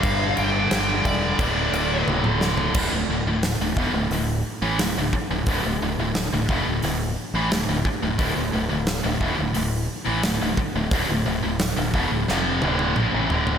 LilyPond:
<<
  \new Staff \with { instrumentName = "Lead electric guitar" } { \time 4/4 \key d \minor \tempo 4 = 88 f''8 g''4 d''4. r4 | r1 | r1 | r1 |
r1 | }
  \new Staff \with { instrumentName = "Distorted electric guitar" } { \clef bass \time 4/4 \key d \minor <g, d g>2 <d, a, d>2 | <d, a,>16 <d, a,>16 <d, a,>16 <d, a,>8 <d, a,>16 <e, b,>16 <d, a,>16 <d, a,>8 r16 <a, e>16 <d, a,>16 <d, a,>16 r16 <d, a,>16 | <d, a,>16 <d, a,>16 <d, a,>16 <d, a,>8 <d, a,>16 <e, b,>16 <d, a,>16 <d, a,>8 r16 <a, e>16 <d, a,>16 <d, a,>16 r16 <d, a,>16 | <d, a,>16 <d, a,>16 <d, a,>16 <d, a,>8 <d, a,>16 <e, b,>16 <d, a,>16 <d, a,>8 r16 <a, e>16 <d, a,>16 <d, a,>16 r16 <d, a,>16 |
<d, a,>16 <d, a,>16 <d, a,>16 <d, a,>8 <d, a,>16 <e, b,>16 <d, a,>16 <f, c f>8 <d, a, d>8 <bes, f>16 <a, e>16 <d, a, d>8 | }
  \new Staff \with { instrumentName = "Fingered electric bass" } { \clef bass \time 4/4 \key d \minor g,,8 g,,8 g,,8 e,,8 d,,8 d,,8 d,,4 | d,,16 d,,16 d,,16 d,,8 d,,16 e,,16 d,,16 d,,8 r16 a,,16 d,,16 d,,16 r16 d,,16 | d,,16 d,,16 d,,16 d,,8 d,,16 e,,16 d,,16 d,,8 r16 a,,16 d,,16 d,,16 r16 d,,16 | d,,16 d,,16 d,,16 d,,8 d,,16 e,,16 d,,16 d,,8 r16 a,,16 d,,16 d,,16 r16 d,,16 |
d,,16 d,,16 d,,16 d,,8 d,,16 e,,16 d,,16 f,,8 d,,8 bes,,16 a,,16 d,,8 | }
  \new DrumStaff \with { instrumentName = "Drums" } \drummode { \time 4/4 <cymc bd>8 cymc8 <cymc sn>8 <cymc bd>8 <cymc bd>8 cymc8 tommh16 toml16 sn16 tomfh16 | <cymc bd>4 <hho sn>8 bd8 hho4 <hho sn>8 bd8 | <hho bd>4 <hho sn>8 bd8 hho4 <hho sn>8 bd8 | <hho bd>4 <hho sn>8 bd8 hho4 <hho sn>8 bd8 |
<hho bd>4 <hho sn>8 bd8 sn8 tommh16 tommh16 toml8 tomfh16 tomfh16 | }
>>